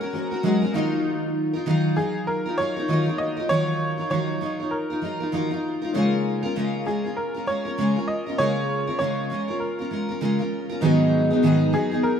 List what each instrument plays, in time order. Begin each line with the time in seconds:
Already playing: grand piano A#3 C#4 C#5, upright piano A#4
0.01 steel-string acoustic guitar C#4 F#4 A#4
0.12 steel-string acoustic guitar G#3 C#4 F#4 A#4, grand piano A#3 C#4 F#4 G#4 C5
0.21 grand piano C#5
0.31 steel-string acoustic guitar C#4 F#4 A#4
0.43 steel-string acoustic guitar F#3 G#3 C#4 F#4 A#4
0.62 steel-string acoustic guitar C#4 F#4 A#4
0.72 steel-string acoustic guitar D#3 F#3 D#4 F4 A#4, grand piano A#3 D#4 F4 F#4
0.76 grand piano D#5
1.53 steel-string acoustic guitar D#4 F4 A#4
1.66 steel-string acoustic guitar D#3 F#3 D#4 F4 A#4
1.96 steel-string acoustic guitar F#3 D#4 F4 A#4, upright piano G#4
2.27 upright piano A#4
2.46 steel-string acoustic guitar D#4 F4 A#4
2.58 steel-string acoustic guitar F#3 D#4 F4 A#4, upright piano C#5
2.76 steel-string acoustic guitar D#4 F4 A#4
2.88 steel-string acoustic guitar D#3 F#3 D#4 F4 A#4
3.06 steel-string acoustic guitar D#4 F4 A#4
3.16 grand piano A#3 D#4 F4 F#4, upright piano D#5
3.20 grand piano D#5
3.37 steel-string acoustic guitar D#4 F4 A#4
3.49 steel-string acoustic guitar D#3 F#3 D#4 F4 A#4, upright piano C#5
3.98 steel-string acoustic guitar D#4 F4 A#4
4.10 steel-string acoustic guitar D#3 F#3 D#4 F4 A#4, upright piano C#5
4.41 steel-string acoustic guitar F#3 D#4 F4 A#4
4.60 steel-string acoustic guitar D#4 F4 A#4
4.71 upright piano A#4
4.90 steel-string acoustic guitar D#4 F4 A#4
5.02 steel-string acoustic guitar F#3 D#4 F4 A#4
5.20 steel-string acoustic guitar D#4 F4 A#4
5.32 steel-string acoustic guitar D#3 F#3 D#4 F4 A#4, grand piano A#3 D#4 F4 F#4 D#5
5.51 steel-string acoustic guitar D#4 F4 A#4
5.82 steel-string acoustic guitar D#4 F4 A#4
5.92 steel-string acoustic guitar C#3 G#3 C#4 F4 A#4, grand piano A#3 C#4 F4 G#4
5.96 grand piano C#5
6.43 steel-string acoustic guitar C#4 F4 A#4
6.56 steel-string acoustic guitar C#3 G#3 C#4 F4 A#4
6.86 steel-string acoustic guitar G#3 C#4 F4 A#4, upright piano G#4
7.04 steel-string acoustic guitar C#4 F4 A#4
7.17 upright piano A#4
7.34 steel-string acoustic guitar C#4 F4 A#4
7.46 steel-string acoustic guitar G#3 C#4 F4 A#4, upright piano C#5
7.65 steel-string acoustic guitar C#4 F4 A#4
7.78 steel-string acoustic guitar C#3 G#3 C#4 F4 A#4
7.96 steel-string acoustic guitar C#4 F4 A#4
8.08 upright piano D#5
8.26 steel-string acoustic guitar C#4 F4 A#4
8.37 steel-string acoustic guitar C#3 G#3 C#4 F4, grand piano A#3 C#4 F4 G#4, upright piano C#5
8.41 steel-string acoustic guitar A#4, grand piano D#5
8.87 steel-string acoustic guitar C#4 F4 A#4
8.99 steel-string acoustic guitar C#3 G#3 C#4 F4 A#4, upright piano C#5
9.30 steel-string acoustic guitar G#3 C#4 F4 A#4
9.48 steel-string acoustic guitar C#4 F4 A#4
9.60 upright piano A#4
9.79 steel-string acoustic guitar C#4 F4 A#4
9.91 steel-string acoustic guitar G#3 C#4 F4 A#4
10.09 steel-string acoustic guitar C#4 F4 A#4
10.21 steel-string acoustic guitar C#3 G#3 C#4 F4 A#4
10.39 steel-string acoustic guitar C#4 F4 A#4
10.69 steel-string acoustic guitar C#4 F4 A#4
10.80 steel-string acoustic guitar G#2 D#3 F#3 B3 D#4 G#4, grand piano B3 D#4 F#4 G#4
10.84 grand piano D#5
11.30 steel-string acoustic guitar F#3 B3 D#4 G#4
11.43 steel-string acoustic guitar G#2 D#3 F#3 B3 D#4 G#4
11.73 steel-string acoustic guitar F#3 B3 D#4 G#4, upright piano G#4
11.91 steel-string acoustic guitar F#3 B3 D#4 G#4
12.03 upright piano A#4